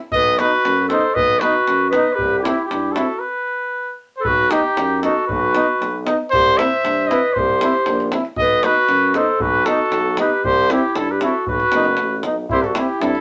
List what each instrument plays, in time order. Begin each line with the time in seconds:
0.12 tuba B1, clarinet B4, trumpet D#5, davul low
0.38 euphonium B3, trombone D#4, clarinet F#4, trumpet B4, davul high
0.65 tuba F#2, davul high
0.88 euphonium B3, trombone D#4, clarinet A4, trumpet C5, davul high
1.14 tuba B1, clarinet B4, trumpet D#5, davul low
1.39 euphonium B3, trombone D#4, clarinet F#4, trumpet B4, davul high
1.68 tuba F#2, davul high
1.90 clarinet B4, trumpet D#5, davul high
1.95 euphonium B3, trombone D#4
2.13 clarinet G4, trumpet B4
2.19 tuba C2, davul low
2.38 trumpet G4
2.43 euphonium C4, clarinet E4, trombone E4, davul high
2.65 clarinet E4, trumpet G4
2.71 tuba G2, davul high
2.92 clarinet F#4, trumpet A4, davul high
2.96 euphonium C4, trombone E4
3.19 trumpet B4
4.16 trumpet C5
4.21 clarinet A4, trumpet B4
4.25 tuba B1, clarinet F#4, davul low
4.51 euphonium B3, trombone D#4, clarinet D#4, trumpet G4, davul high
4.77 tuba F#2, davul high
5.02 euphonium B3, trombone D#4, clarinet F#4, trumpet A4, davul high
5.27 tuba B1, clarinet F#4, trumpet B4, davul low
5.55 euphonium B3, trombone D#4, davul high
5.81 tuba B1, davul high
6.06 euphonium B3, trombone D#4, davul high
6.30 tuba C2, clarinet G4, trumpet C5, davul low
6.58 euphonium C4, trombone E4, clarinet C5, trumpet E5, davul high
6.84 tuba G2, davul high
7.07 euphonium C4, trombone E4, trumpet D#5, davul high
7.12 clarinet B4
7.33 tuba C2, trumpet C5, davul low
7.39 clarinet G4
7.49 davul high
7.61 euphonium C4, trombone E4, davul high
7.74 davul high
7.86 tuba A#1, davul high
8.00 davul high
8.12 euphonium C4, trombone E4, davul high
8.25 davul high
8.36 tuba B1, trumpet D#5, davul low
8.41 clarinet B4
8.63 euphonium B3, trombone D#4, clarinet F#4, trumpet B4, davul high
8.88 tuba F#2, davul high
9.14 euphonium B3, trombone D#4, clarinet A4, trumpet C5, davul high
9.40 tuba B1, clarinet F#4, trumpet B4, davul low
9.65 euphonium B3, trombone D#4, clarinet F#4, trumpet A4, davul high
9.92 tuba B1, davul high
10.17 euphonium B3, trombone D#4, clarinet G4, trumpet B4, davul high
10.44 tuba C2, clarinet G4, trumpet C5, davul low
10.70 euphonium C4, trombone E4, clarinet E4, trumpet G4, davul high
10.95 tuba G2, clarinet E4, trumpet A4, davul high
11.10 clarinet G4, trumpet B4
11.21 euphonium C4, trombone E4, clarinet F#4, trumpet A4, davul high
11.47 tuba B1, clarinet F#4, trumpet B4, davul low
11.60 davul high
11.72 tuba F#1, euphonium B3, trombone D#4, davul high
11.85 davul high
11.97 tuba A1, davul high
12.23 tuba B1, euphonium B3, trombone D#4, davul high
12.49 tuba C2, euphonium C4, trombone E4, clarinet G4, trumpet C5, davul low
12.63 clarinet F#4, trumpet A4, davul high
12.75 euphonium C4, trombone E4, clarinet E4, trumpet G4, davul high
13.00 tuba G2, euphonium C4, trombone E4, clarinet E4, trumpet A4, davul high
13.15 davul high